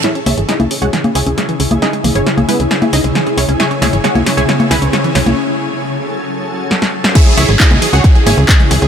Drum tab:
CC |----------------|----------------|----------------|----------------|
RD |----------------|----------------|----------------|----------------|
HH |xxoxxxoxxxoxxxox|xxoxxxoxxxoxxxox|xxoxxxoxxxoxxxox|----------------|
CP |----------------|----------------|----------------|----------------|
SD |o---o---o---o---|o---o---o---o---|o-o-o-o-o-o-o-o-|------------oo-o|
CG |--o--o---o-----o|--o--o---o------|--o--o---o-----o|----------------|
BD |----------------|----------------|----------------|----------------|

CC |x---------------|
RD |--x---x---x---x-|
HH |xxoxxxoxxxoxxxox|
CP |----x-------x---|
SD |----------------|
CG |-----o----o-----|
BD |o---o---o---o---|